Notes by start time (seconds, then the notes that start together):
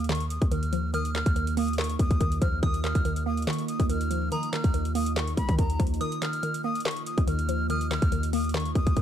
Already playing: D#2 A#3 D#4 F4 D#5
0.04 closed hi-hat
0.09 D#3 C#6, snare, clap, closed hi-hat
0.15 closed hi-hat
0.20 closed hi-hat
0.30 D#6, closed hi-hat
0.42 D#2, kick, closed hi-hat
0.52 D#3 F6, closed hi-hat
0.63 closed hi-hat
0.73 F3, closed hi-hat
0.93 D#3 D#6 F6, closed hi-hat
1.05 closed hi-hat
1.15 D#3 F6, snare, clap, closed hi-hat
1.26 D#2, kick, closed hi-hat
1.36 D#3, closed hi-hat
1.47 closed hi-hat
1.57 A#3 D#6, open hi-hat
1.68 closed hi-hat
1.73 closed hi-hat
1.78 D#3 C#6, snare, clap, closed hi-hat
1.84 closed hi-hat
1.90 closed hi-hat
1.99 D#2 D#6, kick, closed hi-hat
2.11 D#2, kick, closed hi-hat
2.21 D#2 D#3, kick, closed hi-hat
2.32 closed hi-hat
2.42 D#2 F3 F6, kick, closed hi-hat
2.63 D#2 D#3 D#6, kick, closed hi-hat
2.74 closed hi-hat
2.83 D#3 F6, snare, clap, closed hi-hat
2.95 D#2, kick, closed hi-hat
3.05 D#3, closed hi-hat
3.16 closed hi-hat
3.26 A#3 D#6
3.37 closed hi-hat
3.42 closed hi-hat
3.47 D#3 C#6, snare, clap, closed hi-hat
3.53 closed hi-hat
3.58 closed hi-hat
3.68 D#6, closed hi-hat
3.80 D#2, kick, closed hi-hat
3.90 D#3 F6, closed hi-hat
4.01 closed hi-hat
4.11 F3, closed hi-hat
4.32 D#3 A#5 D#6, closed hi-hat
4.43 closed hi-hat
4.53 D#3 F6, snare, clap, closed hi-hat
4.64 D#2, kick, closed hi-hat
4.74 D#3, closed hi-hat
4.85 closed hi-hat
4.95 A#3 D#6, open hi-hat
5.06 closed hi-hat
5.16 D#3 C#6, snare, clap, closed hi-hat
5.27 closed hi-hat
5.37 C#2 B5, kick, closed hi-hat
5.49 D#3, kick, closed hi-hat
5.59 D#2 D#3 A#5, kick, closed hi-hat
5.70 closed hi-hat
5.80 D#2 F3, kick, closed hi-hat
5.87 closed hi-hat
5.94 closed hi-hat
6.01 D#3 A#3 D#6, closed hi-hat
6.12 closed hi-hat
6.22 D#3 F6, snare, clap, closed hi-hat
6.33 closed hi-hat
6.43 D#3, closed hi-hat
6.54 closed hi-hat
6.64 A#3 D#6
6.75 closed hi-hat
6.80 closed hi-hat
6.85 D#3 C#6, snare, clap, closed hi-hat
6.91 closed hi-hat
6.97 closed hi-hat
7.06 D#6, closed hi-hat
7.18 D#2, kick, closed hi-hat
7.28 D#3 F6, closed hi-hat
7.39 closed hi-hat
7.49 F3, closed hi-hat
7.69 D#3 D#6 F6, closed hi-hat
7.81 closed hi-hat
7.91 D#3 F6, snare, clap, closed hi-hat
8.02 D#2, kick, closed hi-hat
8.12 D#3, closed hi-hat
8.23 closed hi-hat
8.33 A#3 D#6, open hi-hat
8.44 closed hi-hat
8.49 closed hi-hat
8.54 D#3 C#6, snare, clap, closed hi-hat
8.60 closed hi-hat
8.65 closed hi-hat
8.75 D#2 D#6, kick, closed hi-hat
8.87 D#2, kick, closed hi-hat
8.97 D#2 D#3, kick, closed hi-hat